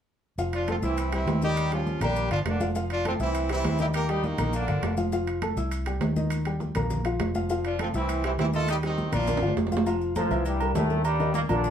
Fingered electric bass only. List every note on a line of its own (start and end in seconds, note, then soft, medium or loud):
0.38 0.79 F1 medium
0.82 1.24 C2 loud
1.26 1.95 D#2 medium
2.00 2.28 A#1 medium
2.30 2.44 G1 medium
2.45 3.14 F1 medium
3.19 3.61 C2 medium
3.64 4.33 D#2 medium
4.38 4.66 A#1 loud
4.68 4.81 G1 medium
4.82 5.51 F1 medium
5.56 5.98 C2 loud
6.00 6.69 D#2 medium
6.75 7.17 A#1 loud
7.20 7.88 F1 medium
7.94 8.35 C2 loud
8.38 9.07 D#2 medium
9.12 9.40 A#1 loud
9.41 9.55 G1 medium
9.56 10.25 F1 medium
10.30 10.72 C2 loud
10.74 11.43 D#2 loud
11.49 11.70 A#1 loud